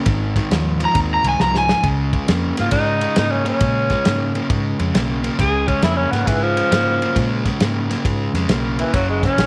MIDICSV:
0, 0, Header, 1, 6, 480
1, 0, Start_track
1, 0, Tempo, 443787
1, 75, Time_signature, 4, 2, 24, 8
1, 10236, End_track
2, 0, Start_track
2, 0, Title_t, "Electric slide guitar"
2, 0, Program_c, 0, 29
2, 921, Note_on_c, 0, 82, 90
2, 1054, Note_off_c, 0, 82, 0
2, 1233, Note_on_c, 0, 82, 107
2, 1370, Note_off_c, 0, 82, 0
2, 1392, Note_on_c, 0, 80, 93
2, 1525, Note_off_c, 0, 80, 0
2, 1530, Note_on_c, 0, 82, 93
2, 1678, Note_off_c, 0, 82, 0
2, 1710, Note_on_c, 0, 80, 114
2, 2003, Note_off_c, 0, 80, 0
2, 10236, End_track
3, 0, Start_track
3, 0, Title_t, "Tenor saxophone"
3, 0, Program_c, 1, 66
3, 2815, Note_on_c, 1, 65, 75
3, 2933, Note_off_c, 1, 65, 0
3, 2939, Note_on_c, 1, 63, 94
3, 3413, Note_off_c, 1, 63, 0
3, 3446, Note_on_c, 1, 63, 81
3, 3576, Note_on_c, 1, 61, 85
3, 3592, Note_off_c, 1, 63, 0
3, 3741, Note_off_c, 1, 61, 0
3, 3771, Note_on_c, 1, 61, 88
3, 4695, Note_off_c, 1, 61, 0
3, 5841, Note_on_c, 1, 68, 96
3, 6136, Note_on_c, 1, 61, 87
3, 6153, Note_off_c, 1, 68, 0
3, 6301, Note_off_c, 1, 61, 0
3, 6306, Note_on_c, 1, 64, 106
3, 6454, Note_on_c, 1, 61, 97
3, 6471, Note_off_c, 1, 64, 0
3, 6612, Note_on_c, 1, 59, 86
3, 6628, Note_off_c, 1, 61, 0
3, 6777, Note_on_c, 1, 52, 91
3, 6793, Note_off_c, 1, 59, 0
3, 6950, Note_on_c, 1, 53, 100
3, 6966, Note_off_c, 1, 52, 0
3, 7884, Note_off_c, 1, 53, 0
3, 9514, Note_on_c, 1, 52, 85
3, 9662, Note_off_c, 1, 52, 0
3, 9669, Note_on_c, 1, 54, 90
3, 9826, Note_off_c, 1, 54, 0
3, 9836, Note_on_c, 1, 56, 79
3, 9990, Note_off_c, 1, 56, 0
3, 10008, Note_on_c, 1, 61, 104
3, 10236, Note_off_c, 1, 61, 0
3, 10236, End_track
4, 0, Start_track
4, 0, Title_t, "Overdriven electric guitar"
4, 0, Program_c, 2, 29
4, 75, Note_on_c, 2, 44, 92
4, 78, Note_on_c, 2, 51, 106
4, 361, Note_off_c, 2, 44, 0
4, 362, Note_off_c, 2, 51, 0
4, 392, Note_on_c, 2, 44, 83
4, 399, Note_on_c, 2, 51, 85
4, 538, Note_off_c, 2, 44, 0
4, 541, Note_off_c, 2, 51, 0
4, 560, Note_on_c, 2, 53, 93
4, 561, Note_on_c, 2, 44, 85
4, 843, Note_off_c, 2, 53, 0
4, 844, Note_off_c, 2, 44, 0
4, 860, Note_on_c, 2, 44, 70
4, 868, Note_on_c, 2, 53, 94
4, 1006, Note_off_c, 2, 44, 0
4, 1016, Note_off_c, 2, 53, 0
4, 1019, Note_on_c, 2, 44, 81
4, 1029, Note_on_c, 2, 51, 95
4, 1313, Note_off_c, 2, 44, 0
4, 1318, Note_off_c, 2, 51, 0
4, 1341, Note_on_c, 2, 44, 68
4, 1350, Note_on_c, 2, 51, 86
4, 1493, Note_off_c, 2, 44, 0
4, 1497, Note_off_c, 2, 51, 0
4, 1510, Note_on_c, 2, 53, 89
4, 1511, Note_on_c, 2, 44, 84
4, 1798, Note_off_c, 2, 53, 0
4, 1799, Note_off_c, 2, 44, 0
4, 1821, Note_on_c, 2, 44, 80
4, 1830, Note_on_c, 2, 53, 87
4, 1973, Note_off_c, 2, 44, 0
4, 1974, Note_off_c, 2, 53, 0
4, 1978, Note_on_c, 2, 49, 91
4, 1988, Note_on_c, 2, 56, 90
4, 2273, Note_off_c, 2, 49, 0
4, 2278, Note_off_c, 2, 56, 0
4, 2309, Note_on_c, 2, 49, 81
4, 2311, Note_on_c, 2, 56, 87
4, 2457, Note_off_c, 2, 49, 0
4, 2458, Note_off_c, 2, 56, 0
4, 2469, Note_on_c, 2, 49, 76
4, 2471, Note_on_c, 2, 58, 77
4, 2759, Note_off_c, 2, 49, 0
4, 2759, Note_off_c, 2, 58, 0
4, 2788, Note_on_c, 2, 49, 71
4, 2790, Note_on_c, 2, 58, 84
4, 2933, Note_off_c, 2, 49, 0
4, 2938, Note_off_c, 2, 58, 0
4, 2946, Note_on_c, 2, 49, 83
4, 2951, Note_on_c, 2, 56, 92
4, 3237, Note_off_c, 2, 49, 0
4, 3240, Note_off_c, 2, 56, 0
4, 3269, Note_on_c, 2, 49, 72
4, 3270, Note_on_c, 2, 56, 73
4, 3411, Note_off_c, 2, 49, 0
4, 3418, Note_off_c, 2, 56, 0
4, 3424, Note_on_c, 2, 49, 92
4, 3429, Note_on_c, 2, 58, 85
4, 3716, Note_off_c, 2, 49, 0
4, 3719, Note_off_c, 2, 58, 0
4, 3734, Note_on_c, 2, 49, 73
4, 3740, Note_on_c, 2, 58, 88
4, 3886, Note_off_c, 2, 49, 0
4, 3893, Note_off_c, 2, 58, 0
4, 3899, Note_on_c, 2, 49, 78
4, 3908, Note_on_c, 2, 56, 94
4, 4194, Note_off_c, 2, 49, 0
4, 4198, Note_off_c, 2, 56, 0
4, 4224, Note_on_c, 2, 49, 67
4, 4229, Note_on_c, 2, 56, 87
4, 4365, Note_off_c, 2, 49, 0
4, 4378, Note_off_c, 2, 56, 0
4, 4378, Note_on_c, 2, 49, 80
4, 4385, Note_on_c, 2, 58, 81
4, 4673, Note_off_c, 2, 49, 0
4, 4677, Note_off_c, 2, 58, 0
4, 4706, Note_on_c, 2, 49, 80
4, 4708, Note_on_c, 2, 58, 81
4, 4852, Note_off_c, 2, 49, 0
4, 4857, Note_off_c, 2, 58, 0
4, 4865, Note_on_c, 2, 49, 87
4, 4871, Note_on_c, 2, 56, 87
4, 5157, Note_off_c, 2, 49, 0
4, 5160, Note_off_c, 2, 56, 0
4, 5183, Note_on_c, 2, 49, 83
4, 5192, Note_on_c, 2, 56, 86
4, 5335, Note_off_c, 2, 49, 0
4, 5339, Note_off_c, 2, 56, 0
4, 5350, Note_on_c, 2, 49, 87
4, 5359, Note_on_c, 2, 58, 90
4, 5639, Note_off_c, 2, 49, 0
4, 5644, Note_off_c, 2, 58, 0
4, 5661, Note_on_c, 2, 49, 71
4, 5665, Note_on_c, 2, 58, 81
4, 5813, Note_off_c, 2, 49, 0
4, 5816, Note_off_c, 2, 58, 0
4, 5829, Note_on_c, 2, 49, 107
4, 5831, Note_on_c, 2, 56, 105
4, 6119, Note_off_c, 2, 49, 0
4, 6120, Note_off_c, 2, 56, 0
4, 6144, Note_on_c, 2, 49, 74
4, 6146, Note_on_c, 2, 56, 83
4, 6290, Note_off_c, 2, 49, 0
4, 6296, Note_off_c, 2, 56, 0
4, 6303, Note_on_c, 2, 49, 91
4, 6309, Note_on_c, 2, 58, 93
4, 6596, Note_off_c, 2, 49, 0
4, 6599, Note_off_c, 2, 58, 0
4, 6626, Note_on_c, 2, 49, 74
4, 6633, Note_on_c, 2, 58, 82
4, 6776, Note_off_c, 2, 49, 0
4, 6780, Note_off_c, 2, 58, 0
4, 6789, Note_on_c, 2, 49, 78
4, 6794, Note_on_c, 2, 56, 100
4, 7078, Note_off_c, 2, 49, 0
4, 7081, Note_off_c, 2, 56, 0
4, 7106, Note_on_c, 2, 49, 77
4, 7106, Note_on_c, 2, 56, 82
4, 7248, Note_off_c, 2, 49, 0
4, 7256, Note_off_c, 2, 56, 0
4, 7261, Note_on_c, 2, 49, 86
4, 7267, Note_on_c, 2, 58, 102
4, 7554, Note_off_c, 2, 49, 0
4, 7557, Note_off_c, 2, 58, 0
4, 7595, Note_on_c, 2, 49, 69
4, 7599, Note_on_c, 2, 58, 88
4, 7740, Note_off_c, 2, 49, 0
4, 7742, Note_off_c, 2, 58, 0
4, 7754, Note_on_c, 2, 49, 97
4, 7763, Note_on_c, 2, 56, 100
4, 8041, Note_off_c, 2, 49, 0
4, 8045, Note_off_c, 2, 56, 0
4, 8061, Note_on_c, 2, 49, 76
4, 8070, Note_on_c, 2, 56, 94
4, 8213, Note_off_c, 2, 49, 0
4, 8218, Note_off_c, 2, 56, 0
4, 8236, Note_on_c, 2, 49, 79
4, 8240, Note_on_c, 2, 58, 91
4, 8521, Note_off_c, 2, 49, 0
4, 8523, Note_off_c, 2, 58, 0
4, 8540, Note_on_c, 2, 49, 70
4, 8544, Note_on_c, 2, 58, 86
4, 8692, Note_off_c, 2, 49, 0
4, 8694, Note_off_c, 2, 58, 0
4, 8703, Note_on_c, 2, 49, 74
4, 8711, Note_on_c, 2, 56, 83
4, 8995, Note_off_c, 2, 49, 0
4, 8999, Note_off_c, 2, 56, 0
4, 9028, Note_on_c, 2, 49, 74
4, 9032, Note_on_c, 2, 56, 94
4, 9176, Note_off_c, 2, 49, 0
4, 9178, Note_off_c, 2, 56, 0
4, 9198, Note_on_c, 2, 49, 77
4, 9203, Note_on_c, 2, 58, 87
4, 9482, Note_off_c, 2, 49, 0
4, 9484, Note_off_c, 2, 58, 0
4, 9510, Note_on_c, 2, 49, 77
4, 9511, Note_on_c, 2, 58, 84
4, 9657, Note_off_c, 2, 49, 0
4, 9657, Note_off_c, 2, 58, 0
4, 9680, Note_on_c, 2, 42, 84
4, 9681, Note_on_c, 2, 49, 99
4, 9963, Note_off_c, 2, 42, 0
4, 9963, Note_off_c, 2, 49, 0
4, 9998, Note_on_c, 2, 42, 74
4, 10005, Note_on_c, 2, 49, 87
4, 10140, Note_off_c, 2, 42, 0
4, 10144, Note_off_c, 2, 49, 0
4, 10154, Note_on_c, 2, 42, 69
4, 10160, Note_on_c, 2, 51, 92
4, 10236, Note_off_c, 2, 42, 0
4, 10236, Note_off_c, 2, 51, 0
4, 10236, End_track
5, 0, Start_track
5, 0, Title_t, "Fingered electric bass"
5, 0, Program_c, 3, 33
5, 66, Note_on_c, 3, 32, 104
5, 430, Note_off_c, 3, 32, 0
5, 551, Note_on_c, 3, 39, 105
5, 913, Note_off_c, 3, 39, 0
5, 1029, Note_on_c, 3, 39, 90
5, 1270, Note_off_c, 3, 39, 0
5, 1336, Note_on_c, 3, 36, 95
5, 1464, Note_off_c, 3, 36, 0
5, 1511, Note_on_c, 3, 36, 81
5, 1873, Note_off_c, 3, 36, 0
5, 1984, Note_on_c, 3, 37, 96
5, 2349, Note_off_c, 3, 37, 0
5, 2474, Note_on_c, 3, 41, 94
5, 2713, Note_off_c, 3, 41, 0
5, 2807, Note_on_c, 3, 44, 90
5, 2923, Note_off_c, 3, 44, 0
5, 2940, Note_on_c, 3, 44, 89
5, 3306, Note_off_c, 3, 44, 0
5, 3435, Note_on_c, 3, 44, 84
5, 3796, Note_off_c, 3, 44, 0
5, 3905, Note_on_c, 3, 46, 105
5, 4270, Note_off_c, 3, 46, 0
5, 4396, Note_on_c, 3, 44, 100
5, 4756, Note_off_c, 3, 44, 0
5, 4870, Note_on_c, 3, 44, 81
5, 5111, Note_off_c, 3, 44, 0
5, 5187, Note_on_c, 3, 41, 80
5, 5311, Note_off_c, 3, 41, 0
5, 5352, Note_on_c, 3, 35, 87
5, 5714, Note_off_c, 3, 35, 0
5, 5824, Note_on_c, 3, 37, 97
5, 6189, Note_off_c, 3, 37, 0
5, 6298, Note_on_c, 3, 41, 91
5, 6543, Note_off_c, 3, 41, 0
5, 6621, Note_on_c, 3, 44, 97
5, 6748, Note_off_c, 3, 44, 0
5, 6783, Note_on_c, 3, 44, 97
5, 7148, Note_off_c, 3, 44, 0
5, 7264, Note_on_c, 3, 44, 88
5, 7629, Note_off_c, 3, 44, 0
5, 7750, Note_on_c, 3, 46, 96
5, 8112, Note_off_c, 3, 46, 0
5, 8227, Note_on_c, 3, 44, 88
5, 8590, Note_off_c, 3, 44, 0
5, 8711, Note_on_c, 3, 44, 88
5, 8951, Note_off_c, 3, 44, 0
5, 9014, Note_on_c, 3, 41, 85
5, 9143, Note_off_c, 3, 41, 0
5, 9179, Note_on_c, 3, 35, 78
5, 9544, Note_off_c, 3, 35, 0
5, 9668, Note_on_c, 3, 30, 99
5, 10030, Note_off_c, 3, 30, 0
5, 10142, Note_on_c, 3, 34, 101
5, 10236, Note_off_c, 3, 34, 0
5, 10236, End_track
6, 0, Start_track
6, 0, Title_t, "Drums"
6, 62, Note_on_c, 9, 51, 91
6, 68, Note_on_c, 9, 36, 118
6, 69, Note_on_c, 9, 38, 33
6, 170, Note_off_c, 9, 51, 0
6, 176, Note_off_c, 9, 36, 0
6, 177, Note_off_c, 9, 38, 0
6, 388, Note_on_c, 9, 36, 79
6, 391, Note_on_c, 9, 51, 59
6, 398, Note_on_c, 9, 38, 27
6, 496, Note_off_c, 9, 36, 0
6, 499, Note_off_c, 9, 51, 0
6, 506, Note_off_c, 9, 38, 0
6, 554, Note_on_c, 9, 51, 75
6, 561, Note_on_c, 9, 38, 106
6, 662, Note_off_c, 9, 51, 0
6, 669, Note_off_c, 9, 38, 0
6, 868, Note_on_c, 9, 51, 69
6, 977, Note_off_c, 9, 51, 0
6, 1026, Note_on_c, 9, 51, 82
6, 1029, Note_on_c, 9, 36, 107
6, 1134, Note_off_c, 9, 51, 0
6, 1137, Note_off_c, 9, 36, 0
6, 1345, Note_on_c, 9, 51, 66
6, 1453, Note_off_c, 9, 51, 0
6, 1512, Note_on_c, 9, 38, 72
6, 1621, Note_off_c, 9, 38, 0
6, 1673, Note_on_c, 9, 38, 68
6, 1781, Note_off_c, 9, 38, 0
6, 1830, Note_on_c, 9, 38, 121
6, 1938, Note_off_c, 9, 38, 0
6, 1985, Note_on_c, 9, 51, 80
6, 1986, Note_on_c, 9, 36, 113
6, 2093, Note_off_c, 9, 51, 0
6, 2094, Note_off_c, 9, 36, 0
6, 2304, Note_on_c, 9, 36, 74
6, 2305, Note_on_c, 9, 51, 54
6, 2412, Note_off_c, 9, 36, 0
6, 2413, Note_off_c, 9, 51, 0
6, 2468, Note_on_c, 9, 51, 91
6, 2474, Note_on_c, 9, 38, 105
6, 2576, Note_off_c, 9, 51, 0
6, 2583, Note_off_c, 9, 38, 0
6, 2782, Note_on_c, 9, 51, 70
6, 2789, Note_on_c, 9, 38, 36
6, 2890, Note_off_c, 9, 51, 0
6, 2897, Note_off_c, 9, 38, 0
6, 2933, Note_on_c, 9, 51, 83
6, 2941, Note_on_c, 9, 36, 109
6, 3041, Note_off_c, 9, 51, 0
6, 3049, Note_off_c, 9, 36, 0
6, 3258, Note_on_c, 9, 51, 69
6, 3366, Note_off_c, 9, 51, 0
6, 3417, Note_on_c, 9, 51, 95
6, 3423, Note_on_c, 9, 38, 126
6, 3525, Note_off_c, 9, 51, 0
6, 3532, Note_off_c, 9, 38, 0
6, 3740, Note_on_c, 9, 51, 63
6, 3848, Note_off_c, 9, 51, 0
6, 3899, Note_on_c, 9, 51, 77
6, 3904, Note_on_c, 9, 36, 111
6, 4007, Note_off_c, 9, 51, 0
6, 4012, Note_off_c, 9, 36, 0
6, 4215, Note_on_c, 9, 51, 53
6, 4221, Note_on_c, 9, 38, 27
6, 4222, Note_on_c, 9, 36, 75
6, 4323, Note_off_c, 9, 51, 0
6, 4329, Note_off_c, 9, 38, 0
6, 4331, Note_off_c, 9, 36, 0
6, 4383, Note_on_c, 9, 51, 77
6, 4389, Note_on_c, 9, 38, 112
6, 4491, Note_off_c, 9, 51, 0
6, 4497, Note_off_c, 9, 38, 0
6, 4706, Note_on_c, 9, 51, 63
6, 4814, Note_off_c, 9, 51, 0
6, 4866, Note_on_c, 9, 51, 82
6, 4867, Note_on_c, 9, 36, 112
6, 4974, Note_off_c, 9, 51, 0
6, 4975, Note_off_c, 9, 36, 0
6, 5186, Note_on_c, 9, 51, 65
6, 5294, Note_off_c, 9, 51, 0
6, 5350, Note_on_c, 9, 51, 87
6, 5357, Note_on_c, 9, 38, 113
6, 5458, Note_off_c, 9, 51, 0
6, 5465, Note_off_c, 9, 38, 0
6, 5668, Note_on_c, 9, 51, 63
6, 5777, Note_off_c, 9, 51, 0
6, 5828, Note_on_c, 9, 36, 105
6, 5833, Note_on_c, 9, 51, 79
6, 5839, Note_on_c, 9, 38, 31
6, 5936, Note_off_c, 9, 36, 0
6, 5941, Note_off_c, 9, 51, 0
6, 5947, Note_off_c, 9, 38, 0
6, 6143, Note_on_c, 9, 36, 77
6, 6143, Note_on_c, 9, 51, 57
6, 6251, Note_off_c, 9, 51, 0
6, 6252, Note_off_c, 9, 36, 0
6, 6299, Note_on_c, 9, 51, 83
6, 6305, Note_on_c, 9, 38, 117
6, 6407, Note_off_c, 9, 51, 0
6, 6413, Note_off_c, 9, 38, 0
6, 6631, Note_on_c, 9, 51, 61
6, 6637, Note_on_c, 9, 38, 34
6, 6739, Note_off_c, 9, 51, 0
6, 6745, Note_off_c, 9, 38, 0
6, 6785, Note_on_c, 9, 36, 111
6, 6787, Note_on_c, 9, 51, 91
6, 6893, Note_off_c, 9, 36, 0
6, 6895, Note_off_c, 9, 51, 0
6, 7107, Note_on_c, 9, 51, 72
6, 7215, Note_off_c, 9, 51, 0
6, 7269, Note_on_c, 9, 51, 98
6, 7275, Note_on_c, 9, 38, 119
6, 7377, Note_off_c, 9, 51, 0
6, 7384, Note_off_c, 9, 38, 0
6, 7593, Note_on_c, 9, 51, 63
6, 7702, Note_off_c, 9, 51, 0
6, 7745, Note_on_c, 9, 36, 110
6, 7747, Note_on_c, 9, 51, 86
6, 7753, Note_on_c, 9, 38, 32
6, 7853, Note_off_c, 9, 36, 0
6, 7855, Note_off_c, 9, 51, 0
6, 7861, Note_off_c, 9, 38, 0
6, 8062, Note_on_c, 9, 51, 59
6, 8063, Note_on_c, 9, 36, 70
6, 8069, Note_on_c, 9, 38, 31
6, 8171, Note_off_c, 9, 36, 0
6, 8171, Note_off_c, 9, 51, 0
6, 8177, Note_off_c, 9, 38, 0
6, 8224, Note_on_c, 9, 51, 82
6, 8230, Note_on_c, 9, 38, 112
6, 8332, Note_off_c, 9, 51, 0
6, 8338, Note_off_c, 9, 38, 0
6, 8552, Note_on_c, 9, 51, 67
6, 8559, Note_on_c, 9, 38, 33
6, 8660, Note_off_c, 9, 51, 0
6, 8667, Note_off_c, 9, 38, 0
6, 8707, Note_on_c, 9, 36, 102
6, 8710, Note_on_c, 9, 51, 72
6, 8815, Note_off_c, 9, 36, 0
6, 8818, Note_off_c, 9, 51, 0
6, 9029, Note_on_c, 9, 51, 65
6, 9035, Note_on_c, 9, 38, 31
6, 9137, Note_off_c, 9, 51, 0
6, 9144, Note_off_c, 9, 38, 0
6, 9183, Note_on_c, 9, 51, 87
6, 9189, Note_on_c, 9, 38, 125
6, 9291, Note_off_c, 9, 51, 0
6, 9297, Note_off_c, 9, 38, 0
6, 9505, Note_on_c, 9, 51, 57
6, 9613, Note_off_c, 9, 51, 0
6, 9667, Note_on_c, 9, 36, 124
6, 9667, Note_on_c, 9, 51, 83
6, 9673, Note_on_c, 9, 38, 33
6, 9775, Note_off_c, 9, 36, 0
6, 9775, Note_off_c, 9, 51, 0
6, 9781, Note_off_c, 9, 38, 0
6, 9984, Note_on_c, 9, 36, 73
6, 9987, Note_on_c, 9, 51, 56
6, 9993, Note_on_c, 9, 38, 32
6, 10092, Note_off_c, 9, 36, 0
6, 10095, Note_off_c, 9, 51, 0
6, 10102, Note_off_c, 9, 38, 0
6, 10147, Note_on_c, 9, 51, 80
6, 10154, Note_on_c, 9, 38, 125
6, 10236, Note_off_c, 9, 38, 0
6, 10236, Note_off_c, 9, 51, 0
6, 10236, End_track
0, 0, End_of_file